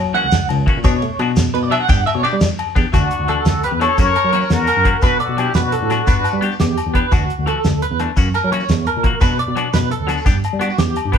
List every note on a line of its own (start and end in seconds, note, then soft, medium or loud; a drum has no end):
0.00 0.13 F#3 loud
0.14 0.25 E3 medium
0.14 0.26 A#3 medium
0.14 0.26 C#4 medium
0.14 0.26 F#4 medium
0.14 0.47 F#5 loud
0.14 ride soft
0.24 0.47 C#2 medium
0.31 snare medium
0.31 ride medium
0.31 shekere loud
0.49 0.65 C#2 loud
0.49 ride medium
0.49 low agogo medium
0.66 0.77 E3 medium
0.66 0.78 A#3 medium
0.66 0.78 C#4 medium
0.66 0.79 F#4 medium
0.66 kick medium
0.66 ride medium
0.77 0.84 A#2 medium
0.84 1.02 B2 loud
0.84 0.95 F#3 medium
0.84 0.95 B3 medium
0.84 0.95 D4 medium
0.84 1.17 C#5 medium
0.84 muted clean electric guitar stroke medium
0.84 kick medium
0.84 ride medium
0.84 low agogo medium
0.84 shekere loud
1.02 1.10 A3 medium
1.02 ride soft
1.19 1.50 B2 medium
1.19 1.30 F#3 medium
1.19 1.30 B3 medium
1.19 1.31 D4 medium
1.19 1.31 F#4 medium
1.19 ride soft
1.19 low agogo medium
1.36 snare medium
1.36 ride medium
1.36 shekere loud
1.54 1.69 B2 medium
1.54 1.63 B4 medium
1.54 ride medium
1.63 1.71 D5 medium
1.71 1.82 F#3 medium
1.71 1.82 B3 medium
1.71 1.83 D4 medium
1.71 1.83 F#4 medium
1.71 1.80 E5 medium
1.71 ride medium
1.71 low agogo medium
1.80 1.89 F#5 medium
1.88 2.05 G2 loud
1.88 1.99 B3 medium
1.88 2.00 D4 medium
1.88 2.00 G4 medium
1.88 1.97 G5 loud
1.88 kick loud
1.88 ride medium
1.88 shekere loud
1.97 2.06 F#5 loud
2.06 2.15 E5 loud
2.06 ride medium
2.06 low agogo medium
2.15 2.23 B2 loud
2.15 2.23 C#5 medium
2.23 2.34 B3 medium
2.23 2.35 D4 medium
2.23 2.35 G4 medium
2.23 2.34 D5 loud
2.23 ride medium
2.23 shekere soft
2.33 2.48 G3 medium
2.41 snare loud
2.41 ride medium
2.41 shekere loud
2.49 shekere soft
2.59 ride medium
2.59 low agogo medium
2.75 2.84 E2 medium
2.75 2.86 B3 medium
2.75 2.87 D4 medium
2.75 2.87 G4 medium
2.75 kick medium
2.75 ride medium
2.75 shekere soft
2.92 3.09 D2 medium
2.92 3.04 E3 medium
2.92 3.04 A3 medium
2.92 3.04 D4 medium
2.92 3.42 F#4 medium
2.92 3.27 F#4 medium
2.92 3.04 F#4 medium
2.92 kick medium
2.92 closed hi-hat medium
2.92 low agogo medium
2.92 shekere medium
2.97 3.44 D4 medium
3.11 closed hi-hat medium
3.19 3.35 D2 medium
3.28 3.39 E3 medium
3.28 3.39 A3 medium
3.28 3.39 D4 medium
3.28 3.40 F#4 medium
3.28 3.62 A4 medium
3.28 closed hi-hat soft
3.28 low agogo medium
3.45 3.61 D2 medium
3.45 3.64 F#4 medium
3.45 3.63 A4 medium
3.45 snare medium
3.45 closed hi-hat medium
3.45 shekere medium
3.64 3.73 G4 medium
3.64 3.72 B4 medium
3.64 3.80 B4 medium
3.64 closed hi-hat medium
3.72 3.87 E2 medium
3.80 3.91 E3 soft
3.80 3.91 A3 medium
3.80 3.92 D4 medium
3.80 3.92 F#4 medium
3.80 4.14 A4 medium
3.80 3.98 A4 medium
3.80 3.97 C#5 loud
3.80 snare soft
3.80 closed hi-hat soft
3.80 low agogo medium
3.98 4.14 F#2 medium
3.98 4.09 E3 medium
3.98 4.09 A#3 medium
3.98 4.09 C#4 medium
3.98 4.09 F#4 medium
3.98 4.48 A#4 medium
3.98 4.47 C#5 loud
3.98 kick medium
3.98 closed hi-hat medium
3.98 shekere medium
4.15 4.33 A#4 medium
4.15 closed hi-hat soft
4.15 low agogo medium
4.15 shekere soft
4.25 4.40 F#3 medium
4.33 4.44 E3 medium
4.33 4.44 A#3 medium
4.33 4.44 C#4 medium
4.33 4.45 F#4 medium
4.33 4.66 C#5 medium
4.33 closed hi-hat soft
4.41 shekere soft
4.50 4.66 E2 medium
4.50 5.01 F#4 medium
4.50 4.99 A#4 loud
4.50 snare medium
4.50 closed hi-hat medium
4.50 shekere medium
4.67 5.01 A#4 medium
4.67 closed hi-hat soft
4.67 low agogo medium
4.67 shekere soft
4.77 4.92 F#2 medium
4.84 4.95 E3 medium
4.84 4.96 A#3 medium
4.84 4.96 C#4 medium
4.84 4.97 F#4 medium
4.84 kick medium
4.84 closed hi-hat medium
5.02 5.18 B2 medium
5.02 5.13 F#3 medium
5.02 5.13 B3 medium
5.02 5.14 D4 medium
5.02 5.14 F#4 medium
5.02 5.23 F#4 medium
5.02 5.21 B4 loud
5.02 5.20 B4 medium
5.02 kick medium
5.02 closed hi-hat medium
5.02 low agogo medium
5.02 shekere medium
5.20 5.39 F#4 medium
5.20 5.38 A4 medium
5.20 5.53 D5 medium
5.20 closed hi-hat soft
5.29 5.45 B2 medium
5.37 5.48 F#3 medium
5.37 5.49 B3 medium
5.37 5.49 D4 medium
5.37 5.55 E4 medium
5.37 5.49 F#4 medium
5.37 5.54 G4 loud
5.37 closed hi-hat soft
5.37 low agogo medium
5.54 5.71 B2 medium
5.54 6.57 D4 medium
5.54 6.56 F#4 medium
5.54 5.72 B4 medium
5.54 snare medium
5.54 closed hi-hat medium
5.54 shekere medium
5.72 6.06 A4 medium
5.72 closed hi-hat medium
5.82 5.97 A2 medium
5.90 6.01 F#3 medium
5.90 6.01 B3 medium
5.90 6.01 D4 medium
5.90 6.02 F#4 medium
5.90 snare soft
5.90 closed hi-hat medium
5.90 low agogo medium
6.07 6.23 G2 medium
6.07 6.18 B3 medium
6.07 6.18 D4 medium
6.07 6.41 B4 medium
6.07 muted clean electric guitar stroke medium
6.07 kick medium
6.07 closed hi-hat medium
6.07 shekere medium
6.24 closed hi-hat soft
6.24 low agogo medium
6.24 shekere soft
6.33 6.49 G3 medium
6.41 6.52 B3 medium
6.41 6.53 D4 medium
6.41 6.53 G4 medium
6.41 closed hi-hat soft
6.51 shekere soft
6.60 6.75 E2 loud
6.60 6.93 G4 medium
6.60 snare medium
6.60 closed hi-hat medium
6.60 shekere medium
6.77 closed hi-hat soft
6.77 low agogo medium
6.77 shekere soft
6.87 7.02 E2 medium
6.94 7.05 B3 medium
6.94 7.05 D4 medium
6.94 7.06 G4 medium
6.94 7.12 B4 medium
6.94 kick medium
6.94 closed hi-hat soft
7.11 7.28 D2 medium
7.11 7.22 E3 medium
7.11 7.23 D4 medium
7.11 7.45 F#4 medium
7.11 7.23 F#4 medium
7.11 muted clean electric guitar stroke medium
7.11 kick medium
7.11 closed hi-hat medium
7.11 low agogo medium
7.11 shekere medium
7.30 closed hi-hat soft
7.38 7.54 D2 medium
7.46 7.57 E3 medium
7.46 7.58 A3 medium
7.46 7.58 F#4 medium
7.46 7.81 A4 medium
7.46 closed hi-hat soft
7.46 low agogo medium
7.64 7.80 D2 medium
7.64 snare medium
7.64 closed hi-hat medium
7.64 shekere medium
7.82 7.99 B4 medium
7.82 closed hi-hat medium
7.91 8.06 E2 medium
7.99 8.10 E3 medium
7.99 8.10 A3 medium
7.99 8.11 D4 medium
7.99 closed hi-hat medium
7.99 low agogo medium
8.16 8.32 F#2 medium
8.16 8.27 E3 medium
8.16 8.28 A#3 medium
8.16 8.28 C#4 medium
8.16 8.28 F#4 loud
8.16 kick medium
8.16 closed hi-hat medium
8.16 shekere medium
8.34 8.51 A#4 medium
8.34 closed hi-hat soft
8.34 low agogo medium
8.34 shekere soft
8.44 8.59 F#3 medium
8.52 8.62 E3 medium
8.52 8.63 A#3 medium
8.52 8.63 C#4 medium
8.52 8.63 F#4 medium
8.52 8.85 C#5 medium
8.52 closed hi-hat medium
8.60 shekere soft
8.69 8.85 E2 loud
8.69 snare medium
8.69 closed hi-hat medium
8.69 shekere medium
8.87 9.20 A#4 medium
8.87 closed hi-hat soft
8.87 low agogo medium
8.97 9.11 A#2 medium
9.03 9.14 E3 medium
9.03 9.15 A#3 medium
9.03 9.16 F#4 medium
9.03 muted clean electric guitar stroke medium
9.03 kick medium
9.03 closed hi-hat medium
9.20 9.37 B2 medium
9.20 9.31 F#3 medium
9.20 9.32 B3 medium
9.20 9.32 D4 medium
9.20 9.32 F#4 medium
9.20 9.38 B4 medium
9.20 kick medium
9.20 closed hi-hat medium
9.20 low agogo medium
9.20 shekere medium
9.39 9.72 D5 medium
9.39 closed hi-hat medium
9.48 9.63 B2 medium
9.56 9.67 F#3 medium
9.56 9.67 B3 medium
9.56 9.67 D4 medium
9.56 9.68 F#4 medium
9.56 closed hi-hat soft
9.56 low agogo medium
9.73 9.90 B2 medium
9.73 9.90 B4 medium
9.73 snare medium
9.73 closed hi-hat medium
9.73 shekere loud
9.91 10.25 A4 medium
9.91 closed hi-hat medium
10.01 10.16 D2 medium
10.07 10.18 F#3 medium
10.07 10.19 B3 medium
10.07 10.19 D4 medium
10.07 10.20 F#4 medium
10.07 snare soft
10.07 closed hi-hat soft
10.07 low agogo medium
10.07 shekere soft
10.17 shekere soft
10.25 10.41 G2 medium
10.25 10.36 B3 medium
10.25 10.36 D4 medium
10.25 10.37 G4 medium
10.25 muted clean electric guitar stroke medium
10.25 kick medium
10.25 closed hi-hat medium
10.25 shekere medium
10.44 closed hi-hat soft
10.44 low agogo medium
10.53 10.68 G3 medium
10.59 10.71 B3 medium
10.59 10.71 D4 medium
10.59 10.78 F#4 medium
10.59 10.72 G4 medium
10.59 closed hi-hat soft
10.70 shekere soft
10.78 10.94 E2 medium
10.78 11.12 G4 medium
10.78 snare medium
10.78 closed hi-hat medium
10.78 shekere medium
10.96 closed hi-hat soft
10.96 low agogo medium
11.05 11.18 G2 medium
11.12 11.18 B3 medium
11.12 11.18 D4 medium
11.12 11.18 G4 medium
11.12 11.18 B4 medium
11.12 kick medium
11.12 closed hi-hat soft